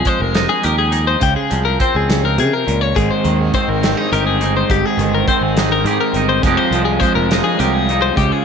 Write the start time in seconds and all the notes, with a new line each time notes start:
Already playing: F2 F3
0.05 G#3 C5, kick, closed hi-hat
0.20 F1 A#4
0.35 D#4, snare, closed hi-hat
0.49 G#4
0.63 D#2 G4 A#4, closed hi-hat
0.78 G#4
0.92 D#4, closed hi-hat
1.07 C5
1.20 C#2 C#3 G4, kick, closed hi-hat
1.36 G#4
1.50 C2 F3, closed hi-hat
1.65 A#4
1.80 C4 C5, kick, closed hi-hat
1.95 C#2 G#4
2.09 C#3, snare, closed hi-hat
2.25 A#4
2.38 C3 C#3 G#4, closed hi-hat
2.53 A#4
2.67 C#2 A#2, closed hi-hat
2.81 C#5
2.95 G#1 G#2 D#3 G#3 C4 D#4 G#4, kick, closed hi-hat
3.11 C5
3.24 D#2 D#3 G#3 C4 D#4, closed hi-hat
3.40 G#4
3.54 D#3 G#3 C4 D#4 C5, kick, closed hi-hat
3.68 G#1 A#4
3.82 G#3 C4 D#4, snare, closed hi-hat
3.97 D#4 G#4
4.12 G1 D#3 G#3 C4 D#4 G4 A#4, closed hi-hat
4.27 G#4
4.41 G#3 C4 D#4, closed hi-hat
4.57 C5
4.69 G1 G#2 D#3 G#3 C4 D#4 G4, kick, closed hi-hat
4.86 G#4
4.98 G1 D#3 G#3 C4 D#4, closed hi-hat
5.15 A#4
5.27 D#3 G#3 C4 D#4 C5, kick, closed hi-hat
5.41 G#1 G#4
5.57 G#3 C4 D#4, snare, closed hi-hat
5.72 A#4
5.84 G#2 D#3 G#3 G4 G#4, closed hi-hat
5.89 C4 D#4
6.01 A#4
6.14 G1 G#3 C4 D#4, closed hi-hat
6.29 C5
6.43 F1 F2 F3 G#3 C4 F4 G#4, kick, closed hi-hat
6.47 D#4 G4
6.57 C5
6.71 C2 F3 G#3 C4 F4, closed hi-hat
6.85 G#4
7.00 F3 G#3 C4 F4 C5, kick, closed hi-hat
7.15 F1 A#4
7.30 G#3 C4 D#4 F4, snare, closed hi-hat
7.44 G#4
7.58 C2 F3 G#3 C4 F4 G4 A#4, closed hi-hat
7.74 G#4
7.87 G#3 C4 D#4 F4, closed hi-hat
8.02 C5
8.16 C#2 C#3 G#3 C#4 F4 G4, kick, closed hi-hat
8.32 G#4